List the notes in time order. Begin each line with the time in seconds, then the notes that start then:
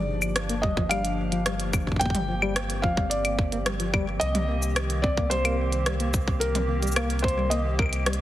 Already playing: G1 F3 A#3 D4 G4 D5
0.22 cabasa, claves
0.36 cross-stick, closed hi-hat
0.49 A#3, closed hi-hat
0.62 G3 D#5, kick
0.77 F3, kick
0.89 G3 F5, closed hi-hat, claves
1.05 closed hi-hat
1.32 F3, closed hi-hat
1.46 G3, cross-stick, closed hi-hat
1.60 closed hi-hat
1.73 kick, cabasa, claves
1.87 kick
1.92 kick
1.96 G5, kick
2.01 A#3 C4, kick, closed hi-hat
2.06 kick
2.10 kick
2.15 G3, closed hi-hat, mid tom
2.29 F3
2.42 G3, claves
2.56 cross-stick, closed hi-hat
2.70 closed hi-hat
2.82 F3 F5, kick
2.97 G3, kick
3.10 D5, closed hi-hat
3.25 closed hi-hat, claves
3.39 kick
3.52 A#3, closed hi-hat
3.66 G3, cross-stick, closed hi-hat
3.80 F3, closed hi-hat
3.94 G3, kick, claves
4.20 C2 D#3 D#5, closed hi-hat
4.35 G3, closed hi-hat, mid tom
4.49 A#3
4.62 cabasa
4.76 cross-stick, closed hi-hat, claves
4.90 closed hi-hat
5.02 C4 D5, kick
5.17 A#3, kick
5.30 G3 C5, closed hi-hat
5.45 A#3, closed hi-hat, claves
5.72 closed hi-hat
5.86 G3, cross-stick, closed hi-hat
6.00 A#3, closed hi-hat
6.14 kick, cabasa
6.28 kick
6.40 A#4, closed hi-hat
6.55 C4, closed hi-hat, mid tom
6.69 A#3
6.83 G3, closed hi-hat, cabasa
6.87 cabasa
6.92 cabasa
6.96 A#3, cross-stick, closed hi-hat, claves
7.10 closed hi-hat
7.19 C5, closed hi-hat
7.24 kick
7.28 closed hi-hat
7.38 G3
7.50 A#3 D#5, closed hi-hat
7.79 A#4, kick, claves
7.82 claves
7.86 claves
7.89 closed hi-hat, claves
7.93 claves
7.96 claves
8.00 claves
8.03 G3, cross-stick, closed hi-hat, claves
8.13 closed hi-hat